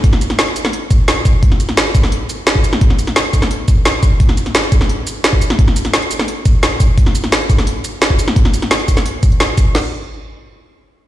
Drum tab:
CC |----------------|----------------|----------------|----------------|
HH |x-xxxxxxx-x-x-x-|x-xxxxxxx-x-x-x-|x-xxxxxxx-x-x-x-|x-xxxxxxx-x-x-x-|
SH |--x-x-x---x-x-x-|--x-x-x---x-x-x-|--x-x-x---x-x-x-|--x-x-x---x-x-x-|
SD |-o-oo--o----o---|-o-oo--o----o--o|-o-oo--o----o---|-o-oo--o----o--o|
BD |o---------o---o-|o-----o------o--|o-----o---o---o-|o-----o------o--|

CC |----------------|----------------|----------------|x---------------|
HH |x-xxxxxxx-x-x-x-|x-xxxxxxx-x-x-x-|x-xxxxxxx-xxx-x-|----------------|
SH |--x-x-x---x-x-x-|--x-x-x---x-x-x-|--x-x-xx--x-x-x-|----------------|
SD |-o-oo--o----o---|-o-oo--o----o--o|-o-oo--o----o---|o---------------|
BD |o---------o---o-|o-----o------o--|o-----o---o---o-|----------------|